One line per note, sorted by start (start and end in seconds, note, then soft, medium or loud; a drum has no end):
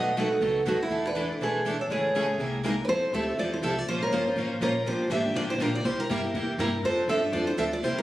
0.00 0.30 B1 medium
0.00 0.10 B2 medium
0.00 0.10 D#3 medium
0.00 0.10 F#3 medium
0.00 0.10 A3 medium
0.00 0.10 B3 medium
0.00 0.11 D#4 medium
0.00 0.11 F#4 medium
0.00 0.11 A4 medium
0.00 0.19 D#5 loud
0.00 0.16 F#5 medium
0.17 0.27 B2 medium
0.17 0.27 D#3 medium
0.17 0.27 F#3 medium
0.17 0.27 A3 medium
0.17 0.27 B3 medium
0.17 0.27 D#4 medium
0.17 0.27 F#4 loud
0.17 0.27 A4 medium
0.17 0.63 A4 medium
0.17 0.69 F#5 medium
0.31 0.41 A3 soft
0.31 0.41 D#4 medium
0.31 0.41 F#4 soft
0.40 0.62 C#2 medium
0.40 0.59 B2 medium
0.40 0.59 D#3 medium
0.40 0.59 F#3 medium
0.40 0.60 A3 medium
0.40 0.60 B3 medium
0.40 0.60 D#4 medium
0.40 0.60 F#4 medium
0.40 0.60 A4 medium
0.65 0.87 D#2 medium
0.65 0.76 B2 medium
0.65 0.76 D#3 medium
0.65 0.76 F#3 medium
0.65 0.76 A3 medium
0.65 0.76 B3 medium
0.65 0.76 D#4 medium
0.65 0.77 F#4 medium
0.65 0.81 F#4 medium
0.65 0.77 A4 medium
0.65 0.80 A4 medium
0.83 1.07 E4 medium
0.83 1.04 A4 medium
0.89 1.29 E2 medium
0.89 1.09 E3 medium
0.89 1.09 A3 medium
0.89 1.09 D4 medium
0.89 1.09 E4 medium
0.89 1.09 A4 medium
1.06 1.29 B4 medium
1.06 1.28 D5 medium
1.16 1.26 E3 medium
1.16 1.26 A3 medium
1.16 1.26 D4 medium
1.16 1.26 E4 medium
1.16 1.26 A4 loud
1.30 1.41 D4 soft
1.30 1.40 E4 soft
1.30 1.40 A4 soft
1.39 1.79 B1 medium
1.39 1.59 E3 medium
1.39 1.59 A3 medium
1.39 1.59 D4 medium
1.39 1.59 E4 medium
1.39 1.59 A4 medium
1.39 1.46 C5 medium
1.43 1.65 G#4 medium
1.43 1.63 B4 medium
1.65 1.75 E3 medium
1.65 1.75 A3 medium
1.65 1.75 D4 medium
1.65 1.76 E4 medium
1.65 1.76 A4 medium
1.79 1.85 A4 medium
1.79 1.84 C#5 medium
1.88 2.28 A1 medium
1.88 2.08 C#3 medium
1.88 2.08 E3 medium
1.88 2.08 G#3 medium
1.88 2.08 A3 medium
1.88 2.08 C#4 medium
1.88 2.08 E4 medium
1.88 2.08 G#4 medium
1.88 2.61 G#4 medium
1.88 2.09 A4 medium
1.88 1.94 D5 medium
1.93 2.35 C#5 medium
2.15 2.25 C#3 medium
2.15 2.25 E3 medium
2.15 2.25 G#3 medium
2.15 2.25 A3 medium
2.15 2.25 C#4 medium
2.15 2.25 E4 medium
2.15 2.25 G#4 loud
2.15 2.26 A4 medium
2.29 2.40 A3 soft
2.29 2.39 C#4 soft
2.29 2.39 G#4 soft
2.38 2.78 C2 medium
2.38 2.57 C3 medium
2.38 2.57 G#3 medium
2.38 2.58 A#3 medium
2.38 2.58 E4 medium
2.38 2.58 G#4 medium
2.38 2.58 A#4 medium
2.64 2.74 C3 medium
2.64 2.74 G#3 medium
2.64 2.74 A#3 medium
2.64 2.82 D#4 medium
2.64 2.74 E4 medium
2.64 2.74 G#4 medium
2.64 2.74 A#4 medium
2.64 2.83 A#4 medium
2.84 3.12 F2 medium
2.84 2.88 B4 medium
2.84 2.88 C#5 soft
2.89 3.07 F3 medium
2.89 3.07 A3 medium
2.89 3.07 C4 medium
2.89 3.12 E4 medium
2.89 3.07 E4 medium
2.89 3.07 A4 medium
2.89 3.14 C5 loud
3.12 3.36 D2 medium
3.12 3.23 F3 medium
3.12 3.24 A3 medium
3.12 3.24 C4 medium
3.12 3.24 E4 medium
3.12 3.36 G4 medium
3.12 3.24 A4 medium
3.12 3.37 E5 medium
3.28 3.38 C4 soft
3.28 3.38 E4 soft
3.28 3.38 A4 medium
3.37 3.61 E2 medium
3.37 3.56 F3 medium
3.37 3.56 A3 medium
3.37 3.57 C4 medium
3.37 3.57 E4 medium
3.37 3.51 F4 medium
3.37 3.57 A4 medium
3.37 3.52 D5 medium
3.52 3.62 E4 medium
3.52 3.63 C5 medium
3.62 3.86 C2 medium
3.62 3.73 F3 loud
3.62 3.73 A3 medium
3.62 3.73 C4 medium
3.62 3.73 E4 medium
3.62 3.80 G4 medium
3.62 3.73 A4 medium
3.62 3.78 E5 medium
3.78 3.87 F4 medium
3.78 3.88 D5 loud
3.87 4.11 A#1 medium
3.87 4.06 F3 medium
3.87 4.06 A#3 medium
3.87 4.06 C#4 medium
3.87 4.00 F4 medium
3.87 4.06 F4 medium
3.87 4.01 C5 loud
3.87 4.06 C5 medium
4.02 4.48 A#4 medium
4.02 4.47 C#5 medium
4.11 4.35 G1 medium
4.11 4.23 F3 loud
4.11 4.23 A#3 loud
4.11 4.23 C#4 medium
4.11 4.23 F4 medium
4.11 4.23 C5 loud
4.27 4.37 C#4 soft
4.27 4.37 F4 soft
4.27 4.37 C5 medium
4.36 4.60 A1 medium
4.36 4.55 F3 medium
4.36 4.55 A#3 medium
4.36 4.55 C#4 medium
4.36 4.55 F4 medium
4.36 4.55 C5 medium
4.61 4.85 A#1 medium
4.61 4.71 F3 medium
4.61 4.72 A#3 medium
4.61 4.72 C#4 medium
4.61 4.72 F4 medium
4.61 4.87 A#4 medium
4.61 4.72 C5 medium
4.61 4.85 C#5 medium
4.85 5.09 G1 medium
4.85 5.04 D3 medium
4.85 5.04 F3 medium
4.85 5.04 A#3 medium
4.85 5.05 D4 medium
4.85 5.09 F4 medium
4.85 5.05 G4 medium
4.85 5.11 C5 loud
5.10 5.33 G#1 medium
5.10 5.21 D3 medium
5.10 5.21 F3 medium
5.10 5.21 A#3 loud
5.10 5.21 D4 medium
5.10 5.34 G4 medium
5.10 5.21 G4 medium
5.10 5.36 E5 loud
5.25 5.34 A#3 soft
5.25 5.34 D4 soft
5.25 5.35 G4 medium
5.34 5.58 A1 medium
5.34 5.53 D3 medium
5.34 5.53 F3 medium
5.34 5.54 A#3 medium
5.34 5.53 D4 medium
5.34 5.42 F4 medium
5.34 5.54 G4 medium
5.34 5.41 D5 loud
5.49 5.59 E4 medium
5.49 5.60 C5 medium
5.58 5.83 A#1 loud
5.58 5.70 D3 medium
5.58 5.70 F3 medium
5.58 5.70 A#3 loud
5.58 5.70 D4 medium
5.58 5.73 D4 medium
5.58 5.71 G4 loud
5.58 5.75 A#4 medium
5.74 5.86 F4 medium
5.74 5.85 D5 medium
5.84 5.97 C2 medium
5.84 6.02 C3 medium
5.84 6.03 G3 medium
5.84 6.03 A#3 medium
5.84 5.97 E4 medium
5.84 6.03 E4 medium
5.84 6.03 G4 medium
5.84 5.99 C5 medium
5.97 6.44 E4 medium
5.97 6.45 A#4 medium
5.97 muted upright bass stroke soft
6.09 6.33 G2 medium
6.09 6.20 C3 medium
6.09 6.20 G3 medium
6.09 6.20 A#3 loud
6.09 6.20 E4 medium
6.09 6.20 G4 medium
6.23 6.34 A#3 soft
6.23 6.34 E4 soft
6.23 6.34 G4 medium
6.34 6.58 E2 medium
6.34 6.52 C3 medium
6.34 6.53 G3 medium
6.34 6.53 A#3 medium
6.34 6.53 E4 medium
6.34 6.53 G4 medium
6.58 6.82 G2 loud
6.58 6.69 C3 medium
6.58 6.69 G3 medium
6.58 6.69 A#3 medium
6.58 6.82 E4 medium
6.58 6.70 E4 medium
6.58 6.70 G4 medium
6.58 6.82 A#4 medium
6.83 7.07 F2 medium
6.83 7.02 F3 medium
6.83 7.02 C4 medium
6.83 7.03 D4 medium
6.83 7.07 F4 medium
6.83 7.03 A4 medium
6.83 7.09 C5 loud
7.08 7.32 G2 medium
7.08 7.19 F3 medium
7.08 7.19 C4 medium
7.08 7.19 D4 medium
7.08 7.31 A4 medium
7.08 7.19 A4 loud
7.08 7.32 E5 medium
7.23 7.32 C4 soft
7.23 7.33 D4 soft
7.23 7.33 A4 medium
7.32 7.57 F2 medium
7.32 7.51 F3 medium
7.32 7.51 C4 medium
7.32 7.51 D4 medium
7.32 7.46 F4 medium
7.32 7.52 A4 medium
7.32 7.47 D5 medium
7.47 7.57 E4 medium
7.47 7.57 C5 medium
7.58 7.81 D2 medium
7.58 7.68 F3 medium
7.58 7.68 C4 medium
7.58 7.68 D4 medium
7.58 7.64 A4 medium
7.58 7.69 A4 medium
7.58 7.63 E5 medium
7.72 7.85 F4 medium
7.72 7.84 D5 medium
7.82 7.95 C2 medium
7.82 8.01 C3 medium
7.82 8.01 G3 medium
7.82 8.01 A#3 medium
7.82 7.97 E4 medium
7.82 8.01 E4 medium
7.82 8.01 G4 medium
7.82 7.97 C5 medium
7.97 8.02 E4 medium
7.97 8.02 A#4 medium